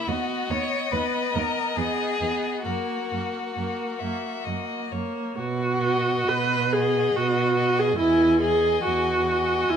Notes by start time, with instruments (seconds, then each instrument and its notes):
0.07 cello D#2, viola B3, violin F#4 D#5
0.49 cello D#2, viola B3, violin C#5
0.91 cello D#2, viola B3, violin B4
1.34 cello D#2, viola B3, violin A#4
1.76 cello E2, viola B3, violin G#4
2.21 cello E2, viola B3
2.64 cello F#2, viola A#3, violin F#4 A#4
3.12 cello F#2, viola A#3
3.56 cello F#2, viola A#3, violin A#4
3.99 cello F#2, viola A#3, violin E5
4.44 cello F#2, viola A#3, violin D#5
4.91 cello F#2, viola A#3, violin C#5
5.39 cello B2, viola F#4
5.82 violin D#5 F#5
6.28 cello B2, viola B4
6.72 viola G#4, violin D#5 F#5
7.15 cello B2, viola F#4
7.57 violin D#5 F#5
7.78 viola G#4
7.98 cello E2, viola E4, violin D#5 G#5
8.40 viola G#4, violin D#5 G#5
8.84 cello E2, viola F#4
9.26 violin D#5 G#5
9.69 cello E2, viola E4